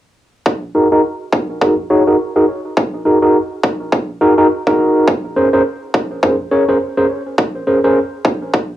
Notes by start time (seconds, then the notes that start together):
0.46 kick
0.75 D#4 F#4 G#4 A#4
0.92 D#4 F#4 G#4 A#4
1.33 kick
1.61 D#4 F#4 G#4 A#4, kick
1.90 D#4 F#4 G#4 C#5
2.07 D#4 F#4 G#4 A#4
2.36 D#4 F#4 G#4 A#4
2.77 kick
3.05 D#4 F#4 G#4 A#4
3.22 D#4 F#4 G#4 A#4
3.63 kick
3.92 kick
4.21 D#4 F#4 G#4 A#4
4.38 D#4 F#4 G#4 A#4
4.67 D#4 F#4 G#4 A#4, kick
5.08 kick
5.36 C#4 G#4 A#4 C5
5.53 C#4 G#4 A#4 C5
5.94 kick
6.23 C#4 G#4 A#4 C5, kick
6.51 C#4 G#4 A#4 C#5
6.69 C#4 G#4 A#4 C5
6.97 C#4 G#4 A#4 C5
7.38 kick
7.67 C#4 G#4 A#4 C5
7.84 C#4 G#4 A#4 C5
8.25 kick
8.54 kick